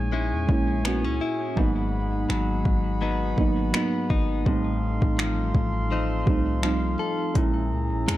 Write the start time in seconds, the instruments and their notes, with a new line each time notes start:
Already playing: 808-style bass A#1, clean electric guitar A#2 G#3 C#4 E4, fm electric piano G#3 A#3 C#4 D#4, brass ensemble C#4 G#4 C#5 G#5
0.12 clean electric guitar G#3 C#4 E4
0.33 808-style bass E2
0.47 808-style bass A#1, fm electric piano G#3 A#3 C#4, kick
0.51 fm electric piano E4
0.84 fm electric piano G#3 A#3 C#4 F#4, clean electric guitar B3, finger snap
1.04 808-style bass C#2, clean electric guitar C#4
1.21 clean electric guitar E4
1.56 808-style bass G#1, clean electric guitar G#2, fm electric piano F#3 A#3 B3 D#4, brass ensemble D#4 F#5 B5, kick
2.30 808-style bass G#1, clean electric guitar F#3, finger snap
2.65 808-style bass G#1, kick
3.01 clean electric guitar F#3 B3 D#4
3.37 808-style bass G#1, fm electric piano F#3 A#3 B3 D#4, kick
3.73 fm electric piano F#3 A#3 B3 D#4, clean electric guitar B3, finger snap
4.10 808-style bass G#1, clean electric guitar D#4, kick
4.45 808-style bass A1, clean electric guitar A2, fm electric piano G3 A3 C4 D#4, brass ensemble D#4 A4 F5 C6, kick
5.02 808-style bass A1, kick
5.18 clean electric guitar F3, finger snap
5.55 808-style bass A1, kick
5.91 clean electric guitar F3 C4 D#4
6.26 808-style bass C2, fm electric piano G3 A3 C4 D#4, kick
6.62 clean electric guitar F3, fm electric piano G3 A3 C4 D#4, brass ensemble D#4, finger snap
6.99 clean electric guitar A4
7.34 808-style bass A#1, clean electric guitar A#2, fm electric piano G#3 A#3 C#4 E4, brass ensemble C#4 G#4 E5 A#5, kick, closed hi-hat
7.72 808-style bass C#2
7.91 808-style bass A#1
8.08 808-style bass E2, clean electric guitar G#3, finger snap, closed hi-hat